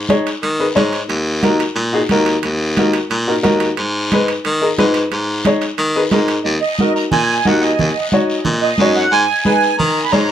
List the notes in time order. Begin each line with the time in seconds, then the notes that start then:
0.09 D#4 G#4 C#5, high conga, high timbale, short guiro
0.27 high timbale, short guiro
0.43 D#3, high conga, high timbale, long guiro
0.59 D#4 G#4 B4
0.75 G#2 D#4 G#4 C#5, high conga, high timbale, short guiro
0.93 high timbale, short guiro
1.09 D#2, high conga, high timbale, long guiro
1.42 D#4 F#4 A#4, high conga, high timbale, short guiro
1.60 high timbale, short guiro
1.76 A#2, high conga, high timbale, long guiro
1.93 D#4 F#4 G#4
2.09 D#2 D#4 F#4 A#4, high conga, high timbale, short guiro
2.26 high timbale, short guiro
2.43 D#2, high conga, high timbale, long guiro
2.77 D#4 F#4 A#4, high conga, high timbale, short guiro
2.94 high timbale, short guiro
3.10 A#2, high conga, high timbale, long guiro
3.27 D#4 F#4 A#4
3.43 D#2 D#4 F#4 A#4, high conga, high timbale, low timbale, short guiro
3.60 high timbale, short guiro
3.77 G#2, high conga, high timbale, long guiro
4.12 D#4 G#4 B4, high conga, high timbale, short guiro
4.28 high timbale, short guiro
4.45 D#3, high conga, high timbale, long guiro
4.61 D#4 G#4 A#4
4.78 G#2 D#4 G#4 B4, high conga, high timbale, low timbale, short guiro
4.94 high timbale, short guiro
5.11 G#2, high conga, high timbale, long guiro
5.45 D#4 G#4 C#5, high conga, high timbale, short guiro
5.61 high timbale, short guiro
5.78 D#3, high conga, high timbale, long guiro
5.96 D#4 G#4 B4
6.11 G#2 D#4 G#4 A#4, high conga, high timbale, low timbale, short guiro
6.28 high timbale, short guiro
6.44 D#2 D#5, high conga, long guiro
6.61 D#5
6.79 D#4 F#4 A#4, high conga, short guiro
6.96 A#5, short guiro
7.12 A#2 G#5, high conga, low conga, long guiro
7.45 D#2 D#4 F#4 A#4 F#5, high conga, short guiro
7.61 D#5, short guiro
7.79 D#2, high conga, low conga, long guiro
8.12 D#4 F#4 C#5, high conga, short guiro
8.30 short guiro
8.45 A#2, high conga, low conga, long guiro
8.62 D#5
8.78 F#2 D#4 F#4 C#5, high conga, short guiro
8.95 F#5, short guiro
9.12 G#2 G#5, high conga, long guiro
9.45 D#4 G#4 B4 G#5, high conga, short guiro
9.62 short guiro
9.78 D#3 A#5, high conga, low conga, long guiro
10.04 B5
10.11 G#2 D#4 G#4 C#5 A#5, high conga, short guiro